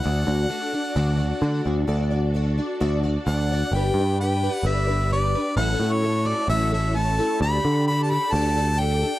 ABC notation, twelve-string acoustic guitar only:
X:1
M:4/4
L:1/8
Q:1/4=130
K:D
V:1 name="Twelve-string acoustic guitar"
[D,A,DFd] [DFd] [A,DFd] [DFd] [D,A,DFd] [DFd] [A,DFd] [DFd] | [D,A,DFd] [DFd] [A,DFd] [DFd] [D,A,DFd] [DFd] [A,DFd] [DFd] | [G,DGB] [DGB] [G,DGB] [DGB] [G,DGB] [DGB] [G,DGB] [DGB] | [A,,F,A,CEA] [A,CEA] [A,CEA] [A,CEA] [A,,F,A,CEA] [A,CEA] [A,CEA] [A,CEA] |
[D,G,DGA] [DGA] [G,DGA] [DGA] [D,G,DGA] [DGA] [G,DGA] [DGA] |]